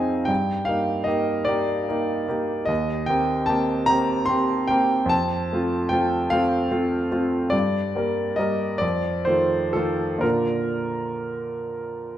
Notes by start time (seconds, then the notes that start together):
Already playing: C4 D#4 G#4 D#5 F5 G5 G#5 A#5
0.25 G2 G5
0.65 A#3 F5
0.69 D#4 G4
1.04 A#3 D#4 G4 D#5
1.45 A#3 D#4 D5
1.49 G4
1.89 A#3 D#4 G4
2.28 A#3 D#4 G4
2.65 D#2 D#5
3.06 A#3 C4 G4 G5
3.46 A#3 C4 G4 A5
3.86 A#3 C4 G4 A#5
4.26 A#3 C4 C6
4.30 G4
4.68 A#3 C4 G4 G5
5.06 F2 A5
5.53 A3 C4 F4
5.89 A3 C4 F4 G5
6.30 A3 C4 F4 F5
6.71 A3 C4 F4
7.11 A3 C4 F4
7.50 G2 D5
7.95 G3 A#3 A#4
8.36 G3 A#3 A#4 D#5
8.78 F2 D5
9.25 D#3 A3 F4 C5
9.73 D#3 A3 F4 A4
10.18 A#2 D3 A#3 A#4
10.22 F4